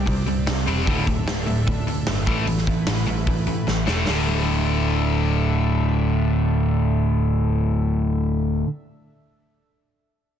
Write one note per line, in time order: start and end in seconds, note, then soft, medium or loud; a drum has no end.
0.00 0.86 C4 medium
0.00 0.86 G4 medium
0.00 0.86 D5 medium
0.06 0.25 C2 loud
0.06 0.24 C3 medium
0.06 0.25 G3 medium
0.06 kick loud
0.06 open hi-hat medium
0.26 0.46 C2 medium
0.26 0.45 C3 medium
0.26 0.45 G3 medium
0.26 open hi-hat medium
0.47 0.66 C2 medium
0.47 0.65 C3 medium
0.47 0.65 G3 medium
0.47 snare loud
0.47 open hi-hat medium
0.58 snare soft
0.67 0.86 E1 medium
0.67 0.86 C3 medium
0.67 0.86 G3 medium
0.67 0.86 C4 loud
0.67 open hi-hat medium
0.87 1.05 D1 medium
0.87 1.06 D2 medium
0.87 1.06 A2 medium
0.87 1.06 D3 medium
0.87 2.26 D4 medium
0.87 2.26 A4 medium
0.87 2.26 E5 medium
0.87 kick loud
0.87 open hi-hat medium
1.07 1.25 D1 loud
1.07 1.25 D2 medium
1.07 1.25 A2 medium
1.07 kick medium
1.07 open hi-hat medium
1.27 1.46 D1 medium
1.27 1.45 D2 medium
1.27 1.45 A2 medium
1.27 snare loud
1.27 open hi-hat medium
1.46 1.66 D1 medium
1.46 1.65 D2 medium
1.46 1.65 A2 medium
1.46 open hi-hat medium
1.67 1.86 D1 loud
1.67 1.85 D2 medium
1.67 1.85 A2 medium
1.67 kick loud
1.67 open hi-hat medium
1.87 2.05 D2 medium
1.87 2.05 A2 medium
1.87 open hi-hat medium
2.07 2.25 G1 medium
2.07 2.25 D2 medium
2.07 2.25 A2 medium
2.07 snare loud
2.07 open hi-hat medium
2.26 2.45 A1 medium
2.26 2.46 A2 medium
2.26 2.46 E3 loud
2.26 2.46 A3 loud
2.26 4.07 A3 medium
2.26 4.06 E4 medium
2.26 4.07 B4 medium
2.26 kick loud
2.26 open hi-hat medium
2.47 2.65 A1 medium
2.47 2.66 A2 medium
2.47 2.66 E3 medium
2.47 open hi-hat medium
2.58 snare soft
2.67 2.85 A1 medium
2.67 2.85 A2 medium
2.67 2.86 E3 medium
2.67 kick medium
2.67 open hi-hat medium
2.87 3.06 A1 medium
2.87 3.05 A2 medium
2.87 3.05 E3 medium
2.87 snare loud
2.87 open hi-hat medium
3.07 3.25 A1 loud
3.07 3.25 A2 medium
3.07 3.25 E3 medium
3.07 open hi-hat medium
3.27 3.45 A1 loud
3.27 3.45 A2 medium
3.27 3.45 E3 medium
3.27 kick loud
3.27 open hi-hat medium
3.47 3.65 A2 medium
3.47 3.65 E3 medium
3.47 open hi-hat medium
3.67 3.85 A1 medium
3.67 3.85 A2 medium
3.67 3.85 E3 medium
3.67 snare medium
3.86 4.06 E1 medium
3.86 4.06 A2 medium
3.86 4.06 E3 loud
3.86 4.06 A3 loud
3.86 snare medium
4.06 8.62 D1 medium
4.06 8.64 D2 medium
4.06 8.66 A2 medium
4.06 8.68 D3 loud
4.06 8.04 D4 medium
4.06 8.04 A4 medium
4.06 8.04 E5 medium
4.06 snare loud
4.06 open hi-hat medium